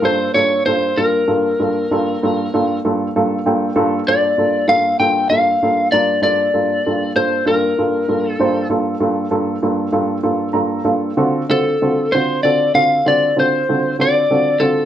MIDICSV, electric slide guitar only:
0, 0, Header, 1, 2, 480
1, 0, Start_track
1, 0, Key_signature, -2, "minor"
1, 0, Tempo, 619835
1, 32, Time_signature, 12, 3, 24, 8
1, 11501, End_track
2, 0, Start_track
2, 0, Title_t, "Electric slide guitar"
2, 0, Program_c, 0, 29
2, 39, Note_on_c, 0, 72, 78
2, 263, Note_off_c, 0, 72, 0
2, 266, Note_on_c, 0, 73, 72
2, 506, Note_off_c, 0, 73, 0
2, 509, Note_on_c, 0, 72, 78
2, 755, Note_on_c, 0, 70, 64
2, 756, Note_off_c, 0, 72, 0
2, 2158, Note_off_c, 0, 70, 0
2, 3163, Note_on_c, 0, 74, 84
2, 3602, Note_off_c, 0, 74, 0
2, 3632, Note_on_c, 0, 77, 86
2, 3866, Note_off_c, 0, 77, 0
2, 3869, Note_on_c, 0, 79, 81
2, 4090, Note_off_c, 0, 79, 0
2, 4102, Note_on_c, 0, 77, 94
2, 4551, Note_off_c, 0, 77, 0
2, 4585, Note_on_c, 0, 74, 75
2, 4818, Note_off_c, 0, 74, 0
2, 4827, Note_on_c, 0, 74, 83
2, 5514, Note_off_c, 0, 74, 0
2, 5547, Note_on_c, 0, 72, 73
2, 5768, Note_off_c, 0, 72, 0
2, 5789, Note_on_c, 0, 70, 71
2, 6393, Note_off_c, 0, 70, 0
2, 6393, Note_on_c, 0, 69, 71
2, 6715, Note_off_c, 0, 69, 0
2, 8913, Note_on_c, 0, 69, 76
2, 9387, Note_on_c, 0, 72, 81
2, 9403, Note_off_c, 0, 69, 0
2, 9624, Note_off_c, 0, 72, 0
2, 9627, Note_on_c, 0, 74, 76
2, 9850, Note_off_c, 0, 74, 0
2, 9873, Note_on_c, 0, 77, 83
2, 10116, Note_off_c, 0, 77, 0
2, 10128, Note_on_c, 0, 74, 79
2, 10364, Note_off_c, 0, 74, 0
2, 10375, Note_on_c, 0, 72, 77
2, 10810, Note_off_c, 0, 72, 0
2, 10852, Note_on_c, 0, 74, 86
2, 11306, Note_on_c, 0, 69, 65
2, 11334, Note_off_c, 0, 74, 0
2, 11501, Note_off_c, 0, 69, 0
2, 11501, End_track
0, 0, End_of_file